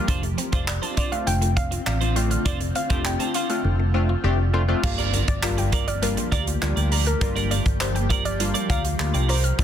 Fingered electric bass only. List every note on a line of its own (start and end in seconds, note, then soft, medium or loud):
0.08 0.33 F1 loud
0.53 0.78 F1 loud
1.27 1.77 F1 loud
1.87 2.36 A1 medium
2.46 2.71 F1 loud
2.90 3.15 F1 medium
3.65 4.14 F1 loud
4.24 4.73 F1 medium
4.83 5.21 G1 loud
5.28 6.15 G1 medium
6.32 6.57 D2 loud
6.62 6.74 D2 loud
6.77 7.14 D2 loud
7.21 7.58 G1 loud
7.66 8.52 G1 medium
8.70 8.94 D2 loud
8.99 9.12 D2 loud
9.14 9.51 C2 loud
9.59 9.64 F1 loud